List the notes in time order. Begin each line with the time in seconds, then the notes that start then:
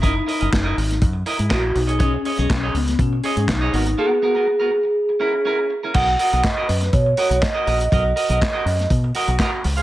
Already playing: F#1
0.02 E4 A#4 D#5, kick, closed hi-hat
0.06 D#4
0.15 muted clean electric guitar stroke
0.26 E4 A#4 D#5, open hi-hat
0.40 F#1 E4 A#4 D#5, closed hi-hat
0.51 F#1, muted clean electric guitar stroke, kick, snare, clap, closed hi-hat
0.64 E4 A#4 D#5
0.76 G#1, muted clean electric guitar stroke, open hi-hat
0.89 muted clean electric guitar stroke, snare, closed hi-hat
1.01 F#2, kick, closed hi-hat
1.13 muted clean electric guitar stroke
1.26 E4 A#4 D#5, open hi-hat
1.39 G#2, muted clean electric guitar stroke, closed hi-hat
1.49 A#1 E4 F#4 A#4 D#5, kick, snare, clap, closed hi-hat
1.63 muted clean electric guitar stroke
1.75 B1 D#4, muted clean electric guitar stroke, open hi-hat
1.87 G#4 C#5 D#5, closed hi-hat
1.99 C#4 G#4 C#5 D#5, kick, closed hi-hat
2.14 muted clean electric guitar stroke
2.25 G#4 C#5 D#5, open hi-hat
2.37 B1 G#4 C#5 D#5, closed hi-hat
2.50 B1, muted clean electric guitar stroke, kick, snare, clap, closed hi-hat
2.63 G#4 C#5 D#5
2.74 C#2 B3, muted clean electric guitar stroke, open hi-hat
2.87 muted clean electric guitar stroke, snare, closed hi-hat
2.99 B2 C#4, kick, closed hi-hat
3.13 muted clean electric guitar stroke
3.23 G#4 C#5 D#5, open hi-hat
3.37 G#2, muted clean electric guitar stroke, closed hi-hat
3.48 B1 D#4, muted clean electric guitar stroke, kick, snare, clap, closed hi-hat
3.61 G#4 C#5 D#5
3.73 G#1 B3 F#4 A#4, open hi-hat
3.86 muted clean electric guitar stroke, closed hi-hat
3.98 B3 F#4 G#4 A#4
4.11 muted clean electric guitar stroke
4.22 B3 F#4 A#4
4.35 B3 F#4 A#4
4.47 muted clean electric guitar stroke
4.60 B3 F#4 A#4
4.71 muted clean electric guitar stroke
4.84 muted clean electric guitar stroke
5.09 muted clean electric guitar stroke
5.20 C#4 E4 A#4
5.34 muted clean electric guitar stroke
5.45 C#4 E4 A#4
5.59 muted clean electric guitar stroke
5.70 muted clean electric guitar stroke
5.83 C#4 E4 A#4
5.94 B1 F#4 A#4 D#5 F#5, kick, crash
6.08 muted clean electric guitar stroke
6.19 F#4 A#4 D#5, open hi-hat
6.32 B1 F#4 A#4 D#5, closed hi-hat
6.44 D#5, muted clean electric guitar stroke, kick, snare, clap, closed hi-hat
6.57 F#4 A#4 D#5
6.68 F#2 B4, muted clean electric guitar stroke, open hi-hat
6.81 muted clean electric guitar stroke, snare, closed hi-hat
6.93 B2 C#5, kick, closed hi-hat
7.06 muted clean electric guitar stroke
7.17 F#4 A#4 D#5, open hi-hat
7.29 B1, muted clean electric guitar stroke, closed hi-hat
7.41 D#5, kick, snare, clap, closed hi-hat
7.55 F#4 A#4 D#5
7.66 A#1 F#4 A#4 D#5, open hi-hat
7.81 muted clean electric guitar stroke, closed hi-hat
7.91 B1 F#4 A#4 D#5, kick, closed hi-hat
8.05 muted clean electric guitar stroke
8.16 F#4 A#4 D#5, open hi-hat
8.29 B1 F#4 A#4 D#5, closed hi-hat
8.41 muted clean electric guitar stroke, kick, snare, clap, closed hi-hat
8.53 F#4 A#4 D#5
8.65 F#2, muted clean electric guitar stroke, open hi-hat
8.79 muted clean electric guitar stroke, snare, closed hi-hat
8.90 B2, kick, closed hi-hat
9.04 muted clean electric guitar stroke
9.14 F#4 A#4 D#5, open hi-hat
9.28 B1, muted clean electric guitar stroke, closed hi-hat
9.39 F#4 A#4 D#5, kick, snare, clap, closed hi-hat
9.52 muted clean electric guitar stroke
9.64 C#2, muted clean electric guitar stroke, open hi-hat
9.77 G#4 C5 F5, closed hi-hat